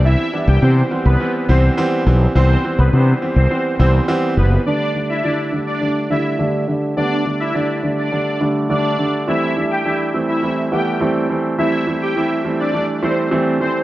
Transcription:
<<
  \new Staff \with { instrumentName = "Supersaw synth" } { \time 4/4 \key g \major \tempo 4 = 104 <e' e''>8 r16 <g' g''>16 <c' c''>16 r8 <b b'>8 r16 <c' c''>16 r4 r16 | <c' c''>8 r16 <b b'>16 <c' c''>16 r8 <c' c''>8 r16 <c' c''>16 r8. <b b'>16 r16 | <d' d''>8 r16 <e' e''>16 <d' d''>16 r8 <d' d''>8 r16 <e' e''>16 r4 r16 | <d' d''>8 r16 <e' e''>16 <d' d''>16 r8 <d' d''>8. r8 <d' d''>8. r16 |
<e' e''>8 r16 <g' g''>16 <e' e''>16 r8 <e' e''>8 r16 <g' g''>16 r4 r16 | <e' e''>8 r16 <g' g''>16 <e' e''>16 r8 <d' d''>8 r16 <c' c''>16 r8. <c' c''>16 r16 | }
  \new Staff \with { instrumentName = "Grand piano" } { \clef bass \time 4/4 \key g \major <e g b c'>8 <e g b d'>8 <e g b c'>8 <e g b c'>8 <e g b c'>8 <e g b c'>8 <e g b c'>8 <e g b c'>8 | <e g b c'>8 <e g b c'>8 <e g b d'>8 <e g b c'>8 <e g b c'>8 <e g b c'>8 <e g b c'>8 <e g b c'>8 | <d g a d'>8 <d g a d'>8 <d g a e'>8 <d g a d'>8 <d g a d'>8 <d g a d'>8 <d g a d'>8 <d g a d'>8 | <d g a b>8 <d g a d'>8 <d g a e'>8 <d g a d'>8 <d g a d'>8 <d g a d'>8 <d g a d'>8 <d g a d'>8 |
<e g a c'>8 <e g a d'>8 <e g a d'>8 <e g a c'>8 <e g a c'>8 <e g a b>8 <e g a c'>8 <e g a c'>8 | <e g a c'>8 <e g a c'>8 <e g a c'>8 <e g a c'>8 <e g a d'>8 <e g a c'>8 <e g a c'>8 <e g a c'>8 | }
  \new Staff \with { instrumentName = "Fretless electric bass" } { \clef bass \time 4/4 \key g \major c,8 r16 c,16 c8 r16 c,16 r8 c,8 r8 b,,8 | c,8 r16 c,16 c8 r16 c,16 r8 c,8 r8 fis,,8 | r1 | r1 |
r1 | r1 | }
>>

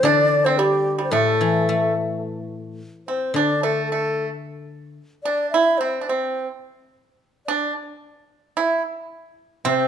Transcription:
<<
  \new Staff \with { instrumentName = "Xiao" } { \time 2/4 \tempo 4 = 109 d''8. c''16 g'8.~ g'32 c''32 | a'4. r8 | r4. c''8 | d''8 a'8 a'8. r16 |
r4. d''8 | e''8 c''8 c''8. r16 | r4. d''8 | r4. e''8 |
r4. c''8 | }
  \new Staff \with { instrumentName = "Pipa" } { \time 2/4 d'8. c'16 g8. g16 | a4. r8 | r4. c'8 | d'8 a8 a8. r16 |
r4. d'8 | e'8 c'16. d'32 c'8. r16 | r4. d'8 | r4. e'8 |
r4. c'8 | }
  \new Staff \with { instrumentName = "Guzheng" } { \clef bass \time 2/4 <d e>2 | a,8 e8 a4~ | a4 r4 | d2~ |
d4 r4 | r2 | r2 | r2 |
r4. c8 | }
>>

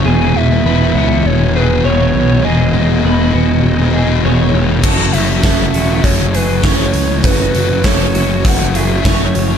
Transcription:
<<
  \new Staff \with { instrumentName = "Soft synth lead" } { \time 4/4 \key e \major \tempo 4 = 100 gis''8 e''4. cis''8 b'8 cis''4 | dis''4 dis''4 dis''4. r8 | a''8 e''4. cis''8 b'8 cis''4 | b'4 cis''4 fis''8 e''4 r8 | }
  \new Staff \with { instrumentName = "Clean electric guitar" } { \time 4/4 \key e \major gis'4 b'8 fis'4 gis'8 cis''4 | gis'4 b'8 fis'4 gis'8 cis''4 | fis'4 a'8 fis'4 gis'8 cis''4 | fis'4 a'8 fis'4 gis'8 cis''4 | }
  \new Staff \with { instrumentName = "Clean electric guitar" } { \time 4/4 \key e \major <e, b, gis b gis'>8 <gis b gis'>16 <gis b gis'>16 <e, b, gis b gis'>8 <gis b gis'>16 <gis b gis'>8 <gis b gis'>16 <gis b gis'>16 <gis b gis'>16 <e, b, gis b gis'>8 <gis b gis'>8 | <e, b, gis b gis'>8 <gis b gis'>16 <gis b gis'>16 <e, b, gis b gis'>8 <gis b gis'>16 <gis b gis'>8 <gis b gis'>16 <gis b gis'>16 <gis b gis'>16 <e, b, gis b gis'>8 <dis gis b gis'>8 | <fis, cis e a cis' fis'>8 <e a cis' fis'>16 <e a cis' fis'>16 <fis, cis e a cis' fis'>8 <e a cis' fis'>16 <e a cis' fis'>8 <e a cis' fis'>16 <e a cis' fis'>16 <e a cis' fis'>16 <fis, cis e a cis' fis'>8 <e a cis' fis'>8 | <fis, cis e a cis' fis'>8 <e a cis' fis'>16 <e a cis' fis'>16 <fis, cis e a cis' fis'>8 <e a cis' fis'>16 <e a cis' fis'>8 <e a cis' fis'>16 <e a cis' fis'>16 <e a cis' fis'>16 <fis, cis e a cis' fis'>8 <e a cis' fis'>8 | }
  \new Staff \with { instrumentName = "Distorted electric guitar" } { \clef bass \time 4/4 \key e \major <e, b, e>8 <e, b, e>16 <b, e>16 <e, b, e>8 <e, b, e>16 <b, e>8 <b, e>16 <e, b, e>16 <b, e>16 <e, b, e>16 <b, e>8 <b, e>16 | <e, b, e>8 <e, b, e>16 <b, e>16 <e, b, e>8 <e, b, e>16 <b, e>8 <b, e>16 <e, b, e>16 <b, e>16 <e, b, e>16 <b, e>8 <b, e>16 | <fis, cis fis>8 <fis, cis fis>16 <cis fis>16 <fis, cis fis>8 <fis, cis fis>16 <cis fis>8 <cis fis>16 <fis, cis fis>16 <cis fis>16 <fis, cis fis>16 <cis fis>8 <cis fis>16 | <fis, cis fis>8 <fis, cis fis>16 <cis fis>16 <fis, cis fis>8 <fis, cis fis>16 <cis fis>8 <cis fis>16 <fis, cis fis>16 <cis fis>16 <fis, cis fis>16 <cis fis>8 <cis fis>16 | }
  \new Staff \with { instrumentName = "Picked electric bass" } { \clef bass \time 4/4 \key e \major e,,8 e,,8 e,,8 cis,8 e,,4 e,,8 b,,8 | e,,8 e,,8 e,,8 e,,8 e,,4 e,,8 e,,8 | fis,,8 fis,,8 fis,,8 e,,8 fis,,4 fis,,8 cis,8 | fis,,8 fis,,8 fis,,8 fis,,8 fis,,4 fis,,8 fis,,8 | }
  \new DrumStaff \with { instrumentName = "Drums" } \drummode { \time 4/4 r4 r4 r4 r4 | r4 r4 r4 r4 | <cymc bd>8 hho8 <hho bd sn>8 hho8 <hho bd>8 hho8 <hho bd sn>8 hho8 | <hho bd>8 hho8 <hho bd sn>8 hho8 <hho bd>8 hho8 <hho bd sn>8 hho8 | }
>>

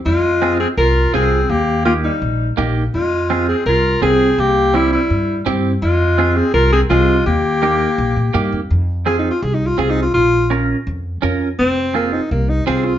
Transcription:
<<
  \new Staff \with { instrumentName = "Alto saxophone" } { \time 4/4 \key f \minor \tempo 4 = 166 f'4. aes'8 bes'4 aes'4 | g'4 f'8 ees'4. r4 | f'4. aes'8 bes'4 aes'4 | g'4 e'8 e'4. r4 |
f'4. aes'8 bes'8 aes'8 f'4 | g'2.~ g'8 r8 | r4 \tuplet 3/2 { aes'8 ees'8 f'8 aes'8 ees'8 f'8 aes'8 ees'8 f'8 } | f'4 r2. |
c'4 bes8 ees'8 bes8 ees'8 c'8 f'8 | }
  \new Staff \with { instrumentName = "Clean electric guitar" } { \time 4/4 \key f \minor r4 <c' f' aes'>8 r4. <c' f' aes'>8 r8 | r4 <bes ees' g'>8 r4. <bes ees' g'>8 r8 | r4 <c' f' aes'>8 r4. <c' f' aes'>8 r8 | r4 <c' e' g'>8 r4. <c' e' g'>8 r8 |
r4 <c' f' aes'>8 r4. <c' f' aes'>8 r8 | r4 <bes ees' g'>8 r4. <bes ees' g'>8 r8 | r4 <c' f' aes'>8 r4. <c' f' aes'>8 r8 | r4 <des' f' bes'>8 r4. <des' f' bes'>8 r8 |
r4 <c' f' aes'>8 r4. <c' f' aes'>8 r8 | }
  \new Staff \with { instrumentName = "Clarinet" } { \time 4/4 \key f \minor aes4. c'8 f'4 c'4 | bes4 bes8 g4. r4 | aes4. c'8 f'4 c'4 | bes4 g8 g4. r4 |
aes4. c'8 f'8 c'8 aes4 | bes2.~ bes8 r8 | r1 | r1 |
r1 | }
  \new Staff \with { instrumentName = "Upright bass" } { \clef bass \time 4/4 \key f \minor f,2 c,4 c,4 | ees,2 bes,,4 bes,,4 | f,2 c,4 c,4 | c,2 g,4 g,4 |
f,2 c,4 c,4 | ees,2 bes,,8 bes,8 g,8 f,8 | f,2 c,4 c,4 | bes,,2 f,4 f,4 |
f,,2 c,4 c,4 | }
>>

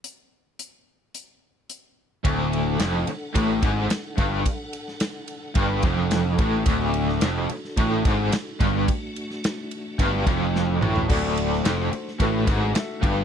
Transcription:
<<
  \new Staff \with { instrumentName = "Grand piano" } { \time 4/4 \key c \lydian \tempo 4 = 108 r1 | r1 | r1 | r1 |
r1 | <fis' a' d''>4 <fis' a' c''>4 <fis' a' b'>4 <fis' a' e''>4 | }
  \new Staff \with { instrumentName = "Tonewheel organ" } { \time 4/4 \key c \lydian r1 | <d' a' fis''>1 | <d' a' fis''>1 | <d' fis' a'>1 |
<a d' fis'>1 | <a d' fis'>1 | }
  \new Staff \with { instrumentName = "Overdriven electric guitar" } { \clef bass \time 4/4 \key c \lydian r1 | d,4 f,8 r8 a,8 gis,8 r8 g,8 | r2 g,8 f,4 a,8 | d,4 f,8 r8 a,8 gis,8 r8 g,8 |
r2 g,8 f,4 a,8 | d,4 f,8 r8 a,8 gis,8 r8 g,8 | }
  \new Staff \with { instrumentName = "Overdriven electric guitar" } { \clef bass \time 4/4 \key c \lydian r1 | d,4 f,8 r8 a,8 gis,8 r8 g,8 | r2 g,8 f,4 a,8 | d,4 f,8 r8 a,8 gis,8 r8 g,8 |
r2 g,8 f,4 a,8 | d,4 f,8 r8 a,8 gis,8 r8 g,8 | }
  \new Staff \with { instrumentName = "Picked electric bass" } { \clef bass \time 4/4 \key c \lydian r1 | d,,4 f,,8 r8 a,,8 gis,,8 r8 g,,8 | r2 g,,8 f,,4 a,,8 | d,,4 f,,8 r8 a,,8 gis,,8 r8 g,,8 |
r2 g,,8 f,,4 a,,8 | d,,4 f,,8 r8 a,,8 gis,,8 r8 g,,8 | }
  \new DrumStaff \with { instrumentName = "Drums" } \drummode { \time 4/4 hh4 hh4 hh4 hh4 | <bd cymr>8 cymr8 <cymr sn>8 cymr8 <bd cymr>8 <bd cymr>8 <cymr sn>8 <bd cymr>8 | <bd cymr>8 cymr16 sn16 <cymr sn>8 cymr8 <bd cymr>8 <bd cymr>8 <cymr sn>8 <bd cymr>8 | <bd cymr>8 cymr16 sn16 <cymr sn>8 cymr16 sn16 <bd cymr>8 <bd cymr>8 <cymr sn>8 <bd cymr>8 |
<bd cymr>8 cymr16 sn16 <cymr sn>8 cymr8 <bd cymr>8 <bd cymr>8 sn8 toml16 tomfh16 | <cymc bd>8 cymr16 sn16 <cymr sn>8 cymr16 sn16 <bd cymr>8 <bd cymr>8 <cymr sn>8 <bd cymr>8 | }
>>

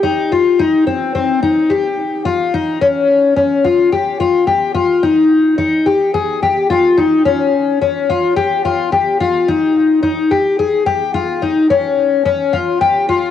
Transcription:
\new Staff \with { instrumentName = "Twelve-string acoustic guitar" } { \time 4/4 \key des \lydian \tempo 4 = 108 ees'8 f'8 ees'8 c'8 c'8 ees'8 g'4 | f'8 ees'8 des'4 des'8 f'8 g'8 f'8 | g'8 f'8 ees'4 ees'8 g'8 aes'8 g'8 | f'8 ees'8 des'4 des'8 f'8 g'8 f'8 |
g'8 f'8 ees'4 ees'8 g'8 aes'8 g'8 | f'8 ees'8 des'4 des'8 f'8 g'8 f'8 | }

